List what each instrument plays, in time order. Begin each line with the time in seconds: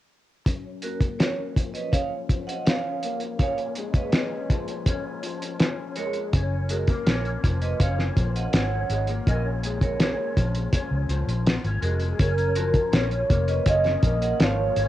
0.46 clean electric guitar F#2 C#4, kick, closed hi-hat
0.82 clean electric guitar A#3, vibraphone F#4 A#4, closed hi-hat
1.00 kick, closed hi-hat
1.19 clean electric guitar C#4, vibraphone A#4 C#5, snare, closed hi-hat
1.56 clean electric guitar F3, kick, closed hi-hat
1.74 vibraphone B4 D#5, closed hi-hat
1.92 clean electric guitar C#4, vibraphone C#5 F5, kick, closed hi-hat
2.29 clean electric guitar F3, kick, closed hi-hat
2.47 vibraphone D#5 F#5, closed hi-hat
2.66 clean electric guitar C#4, vibraphone C#5 F5, snare, closed hi-hat
3.03 clean electric guitar A#3, closed hi-hat
3.20 closed hi-hat
3.39 clean electric guitar A#2 C#4, vibraphone C#5 F5, kick, closed hi-hat
3.58 closed hi-hat
3.76 clean electric guitar G#3, closed hi-hat
3.94 vibraphone B4 D#5, kick, closed hi-hat
4.13 clean electric guitar C#4, snare, closed hi-hat
4.50 clean electric guitar F3, kick, closed hi-hat
4.68 closed hi-hat
4.86 clean electric guitar C#4, kick, closed hi-hat
5.23 clean electric guitar F3, closed hi-hat
5.42 closed hi-hat
5.60 clean electric guitar C#4, snare, closed hi-hat
5.96 clean electric guitar G#3, vibraphone A#4 C#5, closed hi-hat
6.13 closed hi-hat
6.33 fingered electric bass F#1, clean electric guitar C#4, kick, closed hi-hat
6.69 clean electric guitar G#3, vibraphone F#4 A#4, closed hi-hat
6.87 clean electric guitar A#3, kick, closed hi-hat
7.07 fingered electric bass A#1, clean electric guitar C#4, vibraphone A#4 C#5, snare, closed hi-hat
7.25 closed hi-hat
7.44 fingered electric bass F1, clean electric guitar F3, kick, closed hi-hat
7.62 vibraphone B4 D#5, closed hi-hat
7.80 fingered electric bass F#1, clean electric guitar C#4, vibraphone C#5 F5, kick, closed hi-hat
7.99 snare
8.17 fingered electric bass A#1, clean electric guitar F3, kick, closed hi-hat
8.35 vibraphone D#5 F#5, closed hi-hat
8.53 fingered electric bass G#1, clean electric guitar C#4, vibraphone C#5 F#5, snare, closed hi-hat
8.89 fingered electric bass G#1, clean electric guitar G#3, closed hi-hat
9.07 clean electric guitar A#3, closed hi-hat
9.27 fingered electric bass A#1, clean electric guitar A#2 C#4, vibraphone A#4 D#5, kick, closed hi-hat
9.63 clean electric guitar G#3, closed hi-hat
9.81 vibraphone A#4 C#5, kick, closed hi-hat
10.00 clean electric guitar C#4, snare, closed hi-hat
10.37 fingered electric bass A#1, clean electric guitar F3, kick, closed hi-hat
10.55 closed hi-hat
10.73 clean electric guitar C#4, kick, closed hi-hat
10.91 fingered electric bass C#2
11.09 fingered electric bass C#2, clean electric guitar F3, closed hi-hat
11.27 fingered electric bass A#1, closed hi-hat
11.46 clean electric guitar B3, snare, closed hi-hat
11.64 fingered electric bass G#1, clean electric guitar C#4, closed hi-hat
11.82 fingered electric bass F1, clean electric guitar G#3, vibraphone F#4 A#4, closed hi-hat
12.00 closed hi-hat
12.19 fingered electric bass F#1, clean electric guitar C#4, soft synth lead A#4, kick, closed hi-hat
12.38 closed hi-hat
12.56 clean electric guitar F3, vibraphone F#4 A#4, closed hi-hat
12.74 kick, closed hi-hat
12.92 fingered electric bass A#1, clean electric guitar C#4, vibraphone A#4 C#5, soft synth lead C#5, snare, closed hi-hat
13.11 closed hi-hat
13.30 fingered electric bass F1, clean electric guitar A#3, kick, closed hi-hat
13.48 vibraphone B4 D#5, closed hi-hat
13.66 fingered electric bass F#1, clean electric guitar C#4, vibraphone C#5 F5, soft synth lead D#5, kick, closed hi-hat
13.84 snare, closed hi-hat
14.03 fingered electric bass A#1, clean electric guitar A#3, kick, closed hi-hat
14.22 vibraphone D#5 F#5, closed hi-hat
14.39 fingered electric bass G#1, clean electric guitar F3, vibraphone C#5 F5, soft synth lead C#5, snare, closed hi-hat
14.76 fingered electric bass G#1, clean electric guitar C#4, closed hi-hat